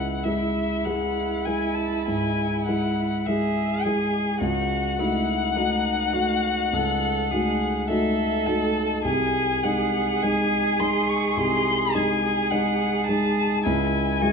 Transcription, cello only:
0.00 3.28 E4 medium
3.26 4.40 G#4 medium
4.40 5.00 F#4 medium
4.99 5.58 E4 medium
5.56 6.15 D#4 medium
6.14 6.75 F#4 medium
6.74 7.33 A4 medium
7.31 7.89 G#4 medium
7.90 9.03 A4 medium
9.06 13.62 G#4 medium
13.64 14.23 E4 medium
14.21 14.32 F#4 medium

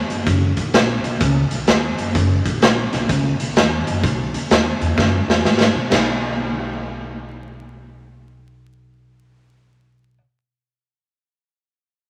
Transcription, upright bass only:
0.10 0.23 F#2 medium
0.27 0.50 F#1 loud
0.57 0.70 A#1 medium
0.74 0.97 A#1 medium
1.04 1.17 B1 medium
1.21 1.44 C#2 loud
1.52 1.64 B1 medium
1.68 1.91 D#2 loud
1.99 2.11 F#2 medium
2.15 2.38 F#1 loud
2.46 2.58 A#1 medium
2.62 2.85 A#1 medium
2.93 3.05 B1 medium
3.09 3.32 C#2 loud
3.40 3.53 B1 medium
3.57 3.79 D#2 loud
3.87 4.00 F#2 medium
4.04 4.26 B1 loud
4.34 4.46 D#2 medium
4.51 4.74 D#2 medium
4.81 4.93 E2 medium
4.98 5.20 F#2 loud
5.28 5.40 E2 medium
5.44 5.67 G#2 medium
5.75 5.87 B2 medium
5.92 10.17 B1 loud

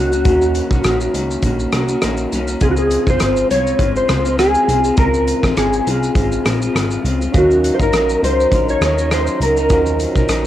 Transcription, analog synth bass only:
0.00 0.27 C#2 medium
0.25 0.62 D#2 loud
0.71 0.81 C2 medium
0.84 1.08 A#1 loud
1.14 1.38 C#2 loud
1.43 1.67 A#1 medium
1.73 1.97 C2 medium
2.03 2.27 A#1 loud
2.32 2.56 C2 medium
2.61 2.98 C#2 loud
3.07 3.18 F#1 medium
3.21 3.45 G#1 medium
3.50 3.74 C2 loud
3.79 4.03 G#1 medium
4.09 4.57 C#2 medium
4.68 4.92 C2 medium
4.98 5.34 C#2 loud
5.43 5.54 A#1 medium
5.57 5.81 G#1 medium
5.87 6.10 C2 loud
6.15 6.39 G#1 medium
6.46 6.69 A#1 medium
6.75 6.99 G#1 medium
7.04 7.28 C#2 medium
7.34 7.71 D#2 loud
7.80 7.90 G#1 medium
7.93 8.17 A#1 medium
8.23 8.46 C#2 loud
8.52 8.76 A#1 loud
8.81 9.29 D#2 medium
9.40 9.72 C#2 medium
9.70 10.07 D#2 loud
10.16 10.26 C2 medium
10.29 10.47 A#1 medium

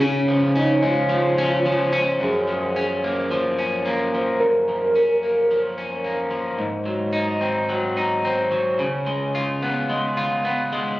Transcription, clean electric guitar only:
0.00 2.20 C#3 loud
0.00 0.55 C#4 medium
0.28 1.09 F3 medium
0.55 1.38 C#4 medium
0.83 2.25 G#3 medium
1.09 1.65 F3 medium
1.38 1.92 C#4 medium
1.66 2.47 F3 medium
1.93 2.76 C#4 medium
2.20 4.39 F#2 medium
2.48 3.30 F3 soft
2.76 3.57 C#4 medium
3.04 3.84 A#3 soft
3.31 4.13 F3 medium
3.59 4.94 C#4 medium
3.86 5.22 A#3 medium
4.14 4.67 F3 medium
4.40 6.58 F#2 medium
4.68 5.50 F3 medium
4.95 5.77 C#4 medium
5.23 6.03 A#3 soft
5.51 6.30 F3 medium
5.78 6.66 C#4 medium
6.04 6.65 A#3 medium
6.31 6.65 F3 medium
6.58 8.79 G#2 medium
6.85 7.68 F#3 soft
7.13 7.96 D#4 medium
7.41 8.24 C4 soft
7.69 8.50 F#3 medium
7.97 8.86 D#4 medium
8.25 8.86 C4 medium
8.51 8.85 F#3 medium
8.79 11.00 C#3 medium
9.06 9.88 G#3 soft
9.35 10.17 F4 medium
9.62 10.43 B3 medium
9.89 10.71 G#3 medium
10.17 11.00 F4 medium
10.45 11.00 B3 medium
10.73 11.00 G#3 medium

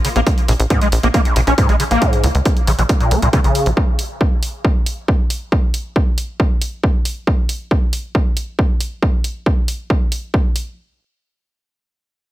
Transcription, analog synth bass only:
0.16 0.23 A#1 medium
0.48 0.56 A#1 medium
0.60 0.66 A#1 medium
0.92 0.99 A#1 medium
1.03 1.10 A#1 medium
1.36 1.43 A#1 medium
1.47 1.54 A#1 medium
1.69 1.76 A#1 medium
1.91 1.98 A#1 medium
2.24 2.31 C#2 medium
2.35 2.42 C#2 medium
2.67 2.75 A#1 medium
2.79 2.85 A#1 medium
3.11 3.18 C2 medium
3.22 3.29 C2 medium
3.44 3.51 A#1 medium
3.66 3.73 A#1 medium

